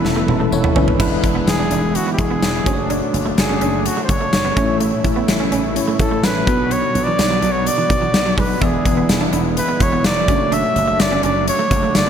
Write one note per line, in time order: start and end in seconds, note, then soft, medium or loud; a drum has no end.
0.00 1.00 E3 medium
0.00 0.96 B3 medium
0.00 0.26 E4 medium
0.00 0.27 A4 medium
0.00 0.96 A4 medium
0.00 0.96 B4 medium
0.00 0.96 E5 medium
0.00 0.96 B5 medium
0.05 0.22 E1 loud
0.05 snare medium
0.16 0.26 A3 medium
0.28 0.45 E1 loud
0.28 0.51 C#4 medium
0.28 0.51 A4 medium
0.28 muted clean electric guitar stroke soft
0.28 high tom medium
0.40 0.50 A3 medium
0.52 0.69 E1 loud
0.52 0.75 E4 medium
0.52 0.75 C#5 medium
0.52 muted clean electric guitar stroke soft
0.52 tambourine medium
0.64 0.74 B3 medium
0.64 mid tom medium
0.76 0.93 F#1 medium
0.76 0.86 C#4 medium
0.76 0.98 D4 medium
0.76 1.00 B4 medium
0.76 floor tom loud
0.88 floor tom loud
0.99 1.17 E1 loud
0.99 2.65 D3 medium
0.99 1.67 E3 medium
0.99 2.62 G#3 medium
0.99 2.65 G#3 medium
0.99 2.65 B3 medium
0.99 2.63 D4 medium
0.99 1.10 E4 medium
0.99 2.65 E4 medium
0.99 2.63 E4 medium
0.99 2.64 B4 medium
0.99 kick loud
0.99 crash medium
1.23 1.41 E1 medium
1.23 muted clean electric guitar stroke soft
1.23 kick medium
1.23 closed hi-hat medium
1.35 1.45 B3 medium
1.47 1.65 E1 medium
1.47 1.97 G#4 loud
1.47 muted clean electric guitar stroke soft
1.47 snare loud
1.47 closed hi-hat medium
1.47 tambourine medium
1.59 1.69 D4 medium
1.71 1.97 E1 medium
1.71 1.81 D4 medium
1.71 closed hi-hat medium
1.95 2.12 F#4 medium
1.95 closed hi-hat medium
2.07 2.17 B3 medium
2.13 2.21 G4 medium
2.18 2.36 E1 medium
2.18 2.91 G#4 medium
2.18 muted clean electric guitar stroke soft
2.18 kick medium
2.18 closed hi-hat medium
2.30 2.40 B3 medium
2.42 2.60 E1 loud
2.42 snare loud
2.42 closed hi-hat medium
2.42 tambourine medium
2.65 3.01 F#1 medium
2.65 4.55 D3 medium
2.65 4.55 F#3 medium
2.65 4.52 A3 medium
2.65 4.55 A3 medium
2.65 2.76 C#4 medium
2.65 4.53 D4 medium
2.65 4.55 D4 medium
2.65 4.53 F#4 medium
2.65 2.73 C5 medium
2.65 kick loud
2.65 closed hi-hat medium
2.73 4.57 C#5 medium
2.90 3.00 D4 medium
2.90 closed hi-hat medium
3.14 3.31 F#1 medium
3.14 muted clean electric guitar stroke soft
3.14 closed hi-hat medium
3.26 3.35 A3 medium
3.37 3.55 F#1 loud
3.37 3.88 G#4 medium
3.37 muted clean electric guitar stroke soft
3.37 snare loud
3.37 closed hi-hat medium
3.37 tambourine medium
3.49 3.59 C#4 medium
3.61 3.87 F#1 medium
3.61 3.71 C#4 medium
3.61 closed hi-hat medium
3.86 4.03 F#4 medium
3.86 closed hi-hat medium
3.97 4.07 A3 medium
4.03 4.12 C5 medium
4.09 4.26 F#1 loud
4.09 4.81 C#5 loud
4.09 muted clean electric guitar stroke soft
4.09 kick medium
4.09 closed hi-hat medium
4.21 4.31 A3 medium
4.33 4.50 F#1 medium
4.33 muted clean electric guitar stroke soft
4.33 snare loud
4.33 closed hi-hat medium
4.33 tambourine medium
4.45 4.55 B3 medium
4.56 4.91 A1 medium
4.56 5.24 A2 medium
4.56 6.45 C#3 medium
4.56 6.45 E3 medium
4.56 5.73 A3 medium
4.56 6.45 A3 medium
4.56 5.73 C#4 medium
4.56 4.66 C#4 medium
4.56 6.45 E4 medium
4.56 5.74 E4 medium
4.56 5.74 C#5 medium
4.56 kick loud
4.56 closed hi-hat medium
4.80 4.90 A3 medium
4.80 closed hi-hat medium
5.04 5.22 A1 loud
5.04 muted clean electric guitar stroke soft
5.04 kick medium
5.04 closed hi-hat medium
5.16 5.26 B3 medium
5.28 5.46 A1 loud
5.28 muted clean electric guitar stroke soft
5.28 snare loud
5.28 closed hi-hat medium
5.28 tambourine medium
5.40 5.50 C#4 medium
5.52 5.78 A1 medium
5.52 5.62 C#4 medium
5.52 closed hi-hat medium
5.75 6.47 A3 medium
5.75 6.47 C#4 medium
5.75 6.47 E4 medium
5.75 6.48 C#5 medium
5.75 closed hi-hat medium
5.88 5.97 A3 medium
5.99 6.17 A1 medium
5.99 6.26 A4 medium
5.99 muted clean electric guitar stroke soft
5.99 kick medium
5.99 closed hi-hat medium
6.11 6.21 A3 medium
6.24 6.41 A1 medium
6.24 6.74 B4 loud
6.24 snare loud
6.24 closed hi-hat medium
6.24 tambourine medium
6.46 6.82 B1 medium
6.46 7.15 B2 medium
6.46 10.24 D3 medium
6.46 8.59 F#3 medium
6.46 8.33 B3 medium
6.46 6.57 B3 medium
6.46 8.59 B3 medium
6.46 8.34 D4 medium
6.46 8.59 F#4 medium
6.46 8.34 F#4 medium
6.46 8.35 B4 medium
6.46 kick loud
6.46 closed hi-hat medium
6.71 6.81 B3 medium
6.71 7.05 C#5 loud
6.71 closed hi-hat medium
6.95 7.12 B1 loud
6.95 muted clean electric guitar stroke soft
6.95 closed hi-hat medium
7.04 7.16 E3 medium
7.04 7.53 D5 loud
7.18 7.36 B1 loud
7.18 muted clean electric guitar stroke soft
7.18 snare loud
7.18 closed hi-hat medium
7.18 tambourine medium
7.30 7.40 F#3 medium
7.42 7.68 B1 medium
7.42 7.52 F#3 medium
7.42 closed hi-hat medium
7.52 7.69 C#5 medium
7.67 8.41 D5 loud
7.67 closed hi-hat medium
7.78 7.88 E3 medium
7.90 8.07 B1 medium
7.90 muted clean electric guitar stroke soft
7.90 kick medium
7.90 closed hi-hat medium
8.02 8.12 E3 medium
8.14 8.31 B1 medium
8.14 muted clean electric guitar stroke soft
8.14 snare loud
8.14 closed hi-hat medium
8.14 tambourine medium
8.26 8.36 F#3 medium
8.37 8.55 B1 medium
8.37 8.47 G#3 medium
8.37 8.65 B4 medium
8.37 kick medium
8.37 open hi-hat medium
8.61 8.79 E1 loud
8.61 9.29 E3 medium
8.61 10.27 G#3 medium
8.61 10.24 B3 medium
8.61 10.27 B3 medium
8.61 8.71 E4 medium
8.61 10.25 E4 medium
8.61 10.27 E4 medium
8.61 10.25 G#4 medium
8.61 9.10 G#4 medium
8.61 10.26 D5 medium
8.61 kick loud
8.61 closed hi-hat medium
8.85 9.03 E1 loud
8.85 muted clean electric guitar stroke soft
8.85 kick medium
8.85 closed hi-hat medium
8.97 9.07 B3 medium
9.09 9.26 E1 loud
9.09 muted clean electric guitar stroke soft
9.09 snare loud
9.09 closed hi-hat medium
9.09 tambourine medium
9.21 9.31 D4 medium
9.33 9.59 E1 medium
9.33 9.43 D4 medium
9.33 closed hi-hat medium
9.57 9.84 B4 loud
9.57 closed hi-hat medium
9.68 9.78 B3 medium
9.80 9.98 E1 medium
9.80 10.05 C#5 medium
9.80 muted clean electric guitar stroke soft
9.80 kick medium
9.80 closed hi-hat medium
9.92 10.02 B3 medium
10.04 10.22 E1 loud
10.04 10.55 D5 loud
10.04 snare loud
10.04 closed hi-hat medium
10.04 tambourine medium
10.27 10.63 F#1 medium
10.27 12.10 D3 medium
10.27 12.10 F#3 medium
10.27 12.10 A3 medium
10.27 10.38 C#4 medium
10.27 12.10 D4 medium
10.27 12.10 F#4 medium
10.27 12.10 C#5 medium
10.27 kick loud
10.27 closed hi-hat medium
10.52 10.62 D4 medium
10.52 11.03 E5 loud
10.52 closed hi-hat medium
10.76 10.93 F#1 medium
10.76 muted clean electric guitar stroke soft
10.76 closed hi-hat medium
10.88 10.97 A3 medium
11.00 11.17 F#1 loud
11.00 11.24 D5 loud
11.00 muted clean electric guitar stroke soft
11.00 snare loud
11.00 closed hi-hat medium
11.00 tambourine medium
11.12 11.21 C#4 medium
11.23 11.49 F#1 medium
11.23 11.33 C#4 medium
11.23 11.46 D5 medium
11.23 closed hi-hat medium
11.48 11.98 C#5 loud
11.48 closed hi-hat medium
11.59 11.69 A3 medium
11.71 11.88 F#1 loud
11.71 muted clean electric guitar stroke soft
11.71 kick medium
11.71 closed hi-hat medium
11.83 11.93 A3 medium
11.95 12.10 F#1 medium
11.95 12.10 D5 loud
11.95 muted clean electric guitar stroke soft
11.95 snare loud
11.95 closed hi-hat medium
11.95 tambourine medium